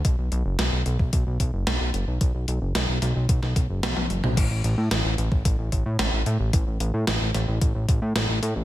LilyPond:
<<
  \new Staff \with { instrumentName = "Analog synth bass" } { \clef bass \time 4/4 \key b \dorian \tempo 4 = 111 b,,16 b,,16 b,,16 fis,,16 b,,16 b,,16 b,,16 b,,16 b,,16 b,,16 b,,16 fis,,16 b,,16 b,,16 fis,,16 b,,16 | b,,16 b,,16 b,,16 fis,,16 b,,16 b,,16 b,,16 b,,16 b,,16 b,,16 b,,16 fis,,16 b,,16 b,,16 fis,,16 b,,16 | a,,16 a,,16 a,,16 a,16 a,,16 a,,16 a,,16 a,,16 a,,16 a,,16 a,,16 a,16 a,,16 a,,16 a,16 a,,16 | a,,16 a,,16 a,,16 a,16 a,,16 a,,16 a,,16 a,,16 a,,16 a,,16 a,,16 a,16 a,,16 a,,16 a,16 a,,16 | }
  \new DrumStaff \with { instrumentName = "Drums" } \drummode { \time 4/4 <hh bd>8 hh8 <hh sn>8 hh16 bd16 <hh bd>8 <hh bd>8 <hh sn>8 hh8 | <hh bd>8 hh8 <hh sn>8 <hh sn>8 <hh bd>16 sn16 <hh bd>8 <hh sn tommh>16 tommh16 hh16 toml16 | <cymc hh bd>8 hh8 <hh sn>8 hh16 bd16 <hh bd>8 <hh bd>8 <hh sn>8 hh8 | <hh bd>8 hh8 <hh sn>8 <hh sn>8 <hh bd>8 <hh bd>8 <hh sn>8 hh8 | }
>>